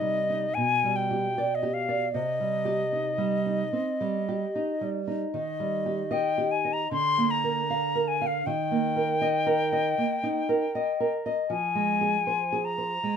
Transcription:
Already playing: nylon-string guitar C3 D#4, flute D#5
0.01 nylon-string guitar G3
0.30 nylon-string guitar D#4
0.54 nylon-string guitar B2, flute G#5
0.84 nylon-string guitar G3
0.96 flute G5
1.11 nylon-string guitar G4
1.38 nylon-string guitar D5
1.55 flute D#5
1.63 nylon-string guitar G4
1.74 flute F5
1.89 nylon-string guitar D5
2.13 nylon-string guitar C3, flute D#5
2.40 nylon-string guitar G3
2.65 nylon-string guitar G4
2.92 nylon-string guitar D#4
3.18 nylon-string guitar G3
3.46 nylon-string guitar D#4
3.73 nylon-string guitar C4
4.01 nylon-string guitar G3
4.29 nylon-string guitar G4
4.55 nylon-string guitar D#4
4.81 nylon-string guitar G3
5.07 nylon-string guitar D#4
5.34 nylon-string guitar D#3, flute D#5
5.60 nylon-string guitar G3
5.86 nylon-string guitar G4
6.11 nylon-string guitar D#5, flute G5
6.38 nylon-string guitar G4
6.51 flute G#5
6.65 nylon-string guitar D#5
6.73 flute A#5
6.91 nylon-string guitar D3, flute C6
7.18 nylon-string guitar A#3
7.31 flute A#5
7.44 nylon-string guitar A#4
7.70 nylon-string guitar F5
7.95 nylon-string guitar A#4
8.08 flute G#5
8.21 nylon-string guitar F5
8.27 flute F5
8.46 nylon-string guitar D#3, flute G5
8.71 nylon-string guitar A#3
8.96 nylon-string guitar A#4
9.21 nylon-string guitar D#5
9.47 nylon-string guitar A#4
9.72 nylon-string guitar D#5
9.98 nylon-string guitar A#3
10.23 nylon-string guitar D#4
10.49 nylon-string guitar A#4
10.75 nylon-string guitar D#5
11.00 nylon-string guitar A#4
11.26 nylon-string guitar D#5
11.50 nylon-string guitar F3, flute G#5
11.75 nylon-string guitar G#3
12.01 nylon-string guitar G#4
12.27 nylon-string guitar C5
12.52 nylon-string guitar G#4
12.65 flute A#5
12.78 nylon-string guitar C5
13.03 nylon-string guitar G#3

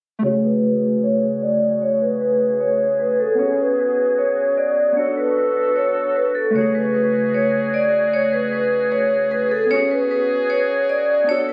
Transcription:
0.19 synth keys C#3 A3
0.24 woodwind section C#3 A3 F#4 G#4, synth keys F#4, vibraphone C#5
0.29 synth keys G#4
0.44 vibraphone B4
0.63 vibraphone B4
1.03 vibraphone C#5
1.42 vibraphone D5
1.82 vibraphone C#5
2.01 vibraphone B4
2.21 vibraphone B4
2.60 vibraphone C#5
3.00 vibraphone B4
3.20 vibraphone A4
3.35 synth keys B3 C#4
3.39 woodwind section B3 F#4, synth keys F#4, vibraphone C#5
3.45 synth keys G#4
3.60 vibraphone B4
3.79 vibraphone B4
4.18 vibraphone C#5
4.58 vibraphone D5
4.92 synth keys B3 D4
4.97 woodwind section D3 A4, synth keys F#4, vibraphone C#5
5.02 synth keys A4
5.17 vibraphone B4
5.37 vibraphone B4
5.76 vibraphone C#5
6.16 vibraphone B4
6.35 vibraphone A4
6.50 synth keys C#3 A3
6.55 woodwind section C#3 A3 G#4, synth keys F#4, vibraphone C#5
6.60 synth keys G#4
6.75 vibraphone B4
6.95 vibraphone B4
7.34 vibraphone C#5
7.74 vibraphone D5
8.13 vibraphone C#5
8.33 vibraphone B4
8.53 vibraphone B4
8.92 vibraphone C#5
9.31 vibraphone B4
9.51 vibraphone A4
9.66 synth keys B3 C#4
9.71 woodwind section B3 F#4 G#4, synth keys F#4, vibraphone C#5
9.76 synth keys G#4
9.91 vibraphone B4
10.11 vibraphone B4
10.50 vibraphone C#5
10.89 vibraphone D5
11.24 synth keys B3 D4
11.29 woodwind section D3 A4, synth keys F#4, vibraphone C#5
11.34 synth keys A4
11.49 vibraphone B4

